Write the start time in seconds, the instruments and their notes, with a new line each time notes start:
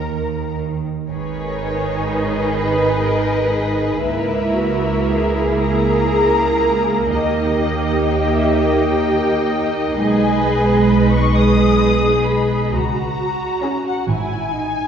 Already playing: double bass section D#2, cello section D#3, viola section A#4, violin section A#4 A#5
1.09 double bass section G#1, viola section D#3 D#4, violin section G#4 B4 C#5
2.55 cello section B4, violin section D#5
3.05 cello section A#4
3.54 cello section G#4
4.01 double bass section C#2, viola section A#3 E4, cello section E4, violin section A#4 E5
4.54 cello section F#4
5.08 cello section G#4
5.62 violin section A#4 A#5
7.12 double bass section D#2, viola section D#4, cello section G4, violin section D#5
8.08 violin section G5
8.33 violin section E5
8.56 violin section G5
9.94 double bass section B1, viola section G#3, cello section G#4, violin section B4 G#5
10.89 violin section B5
11.12 violin section C#6
11.36 cello section G#4, violin section D#6
12.27 violin section B5
12.73 double bass section C#2, cello section F#4, violin section A#5
13.62 viola section C#4 E4, violin section G#4 C#5
13.87 violin section F#5
14.08 double bass section G#1, cello section E4, violin section G#5
14.54 cello section D#4